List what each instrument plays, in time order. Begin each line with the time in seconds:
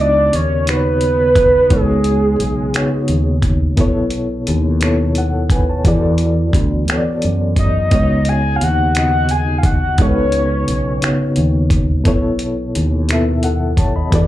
Already playing: fretless electric bass C#2, reed electric piano C#3 B3 C#4 D#4 F#4
0.01 soft synth lead D5
0.33 fretless electric bass D#2, soft synth lead C#5, closed hi-hat
0.66 reed electric piano C#3 B3 D#4 F#4 B4, soft synth lead B4, finger snap, closed hi-hat
0.77 reed electric piano C#5
1.01 closed hi-hat
1.35 kick, closed hi-hat
1.70 fretless electric bass C#2, reed electric piano C#3 B3 D#4 F#4 C#5, kick, closed hi-hat
1.74 soft synth lead G#4
2.04 closed hi-hat
2.40 fretless electric bass B1, closed hi-hat
2.73 reed electric piano C#3 B3 D#4 F#4 C#5, finger snap, muted fretless electric bass stroke, closed hi-hat
3.08 fretless electric bass D#2, closed hi-hat
3.42 kick, closed hi-hat
3.77 fretless electric bass B1, reed electric piano B2 B3 E4 A4, kick, closed hi-hat
3.81 reed electric piano C#5
4.10 closed hi-hat
4.47 fretless electric bass D#2, closed hi-hat
4.80 reed electric piano B2 B3 E4 A4 C#5, finger snap, closed hi-hat
5.15 reed electric piano F#5, closed hi-hat
5.19 reed electric piano A4
5.50 reed electric piano B4 G#5, kick, closed hi-hat
5.69 reed electric piano C#5 A5
5.84 fretless electric bass E2, reed electric piano E3 B3 F#4 G#4 D5, kick, closed hi-hat
5.94 reed electric piano A4
6.18 closed hi-hat
6.53 fretless electric bass D2, kick, closed hi-hat
6.87 reed electric piano E3 B3 F#4 A4, finger snap, muted fretless electric bass stroke, closed hi-hat
6.92 reed electric piano C#5
6.97 reed electric piano D5
7.22 fretless electric bass F#2, closed hi-hat
7.56 soft synth lead D#5, kick, closed hi-hat
7.90 fretless electric bass C#2, reed electric piano C#3 B3 D#4 F#4, kick, closed hi-hat
7.95 reed electric piano C#5
8.25 soft synth lead G#5, closed hi-hat
8.56 soft synth lead F5
8.61 fretless electric bass D#2, soft synth lead F#5, closed hi-hat
8.94 reed electric piano C#3 B3 D#4 F#4, soft synth lead F#5, finger snap, closed hi-hat
8.98 reed electric piano D#5
9.29 soft synth lead G#5, closed hi-hat
9.58 soft synth lead F5
9.63 soft synth lead F#5, kick, closed hi-hat
9.98 fretless electric bass C#2, reed electric piano C#3 B3 D#4 F#4 A4, soft synth lead C#5, kick, closed hi-hat
10.08 reed electric piano B4
10.32 closed hi-hat
10.68 fretless electric bass B1, closed hi-hat
11.01 reed electric piano C#3 B3 D#4 F#4, finger snap, muted fretless electric bass stroke, closed hi-hat
11.05 reed electric piano C#5
11.36 fretless electric bass D#2, closed hi-hat
11.70 kick, closed hi-hat
12.04 fretless electric bass B1, reed electric piano B2 B3 E4 A4, kick, closed hi-hat
12.08 reed electric piano C#5
12.39 closed hi-hat
12.75 fretless electric bass D#2, closed hi-hat
13.09 reed electric piano B2 B3 E4 A4, finger snap, closed hi-hat
13.13 reed electric piano E5
13.43 reed electric piano A4 F#5, closed hi-hat
13.77 reed electric piano C#5 A5, kick, closed hi-hat
13.96 reed electric piano D#5 B5
14.11 fretless electric bass E2, reed electric piano E3 B3 F#4 A4, kick, closed hi-hat
14.15 reed electric piano D5